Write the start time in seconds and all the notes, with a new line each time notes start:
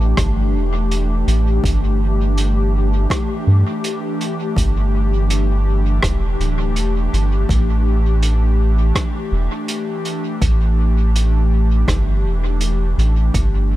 Already playing: A1 E3 A3 D4 G4
0.17 G1, kick, cross-stick, closed hi-hat
0.54 E1
0.91 closed hi-hat
1.27 A1, closed hi-hat
1.64 G1, kick, closed hi-hat
2.38 closed hi-hat
3.10 kick, cross-stick, closed hi-hat
3.47 G2
3.84 closed hi-hat
4.21 closed hi-hat
4.56 G1, kick, closed hi-hat
5.30 closed hi-hat
6.03 E1, kick, cross-stick, closed hi-hat
6.39 D1, closed hi-hat
6.76 E1, closed hi-hat
7.13 G1, closed hi-hat
7.49 A1, kick, closed hi-hat
8.23 closed hi-hat
8.95 kick, cross-stick, closed hi-hat
9.32 E1
9.68 closed hi-hat
10.05 closed hi-hat
10.41 A1, kick, closed hi-hat
11.16 closed hi-hat
11.88 G1, kick, cross-stick, closed hi-hat
12.24 E1
12.61 closed hi-hat
12.98 A1, closed hi-hat
13.34 G1 E3, kick, closed hi-hat